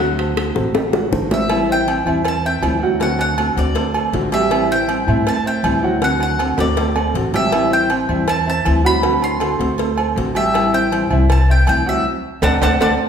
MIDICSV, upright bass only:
0, 0, Header, 1, 2, 480
1, 0, Start_track
1, 0, Time_signature, 4, 2, 24, 8
1, 0, Tempo, 376884
1, 16670, End_track
2, 0, Start_track
2, 0, Title_t, "Upright bass"
2, 0, Program_c, 0, 32
2, 0, Note_on_c, 0, 38, 95
2, 636, Note_off_c, 0, 38, 0
2, 712, Note_on_c, 0, 33, 87
2, 1382, Note_off_c, 0, 33, 0
2, 1428, Note_on_c, 0, 33, 86
2, 2555, Note_off_c, 0, 33, 0
2, 2621, Note_on_c, 0, 40, 97
2, 3295, Note_off_c, 0, 40, 0
2, 3339, Note_on_c, 0, 38, 91
2, 4469, Note_off_c, 0, 38, 0
2, 4538, Note_on_c, 0, 38, 90
2, 5213, Note_off_c, 0, 38, 0
2, 5254, Note_on_c, 0, 33, 94
2, 6386, Note_off_c, 0, 33, 0
2, 6467, Note_on_c, 0, 45, 91
2, 7137, Note_off_c, 0, 45, 0
2, 7175, Note_on_c, 0, 38, 96
2, 8307, Note_off_c, 0, 38, 0
2, 8381, Note_on_c, 0, 38, 96
2, 9055, Note_off_c, 0, 38, 0
2, 9095, Note_on_c, 0, 33, 89
2, 10228, Note_off_c, 0, 33, 0
2, 10300, Note_on_c, 0, 40, 96
2, 10975, Note_off_c, 0, 40, 0
2, 11033, Note_on_c, 0, 38, 90
2, 12158, Note_off_c, 0, 38, 0
2, 12218, Note_on_c, 0, 38, 92
2, 12895, Note_off_c, 0, 38, 0
2, 12939, Note_on_c, 0, 33, 97
2, 14072, Note_off_c, 0, 33, 0
2, 14143, Note_on_c, 0, 36, 94
2, 14818, Note_off_c, 0, 36, 0
2, 14867, Note_on_c, 0, 38, 96
2, 15318, Note_off_c, 0, 38, 0
2, 15816, Note_on_c, 0, 38, 101
2, 16004, Note_off_c, 0, 38, 0
2, 16065, Note_on_c, 0, 38, 98
2, 16249, Note_off_c, 0, 38, 0
2, 16308, Note_on_c, 0, 38, 92
2, 16491, Note_off_c, 0, 38, 0
2, 16670, End_track
0, 0, End_of_file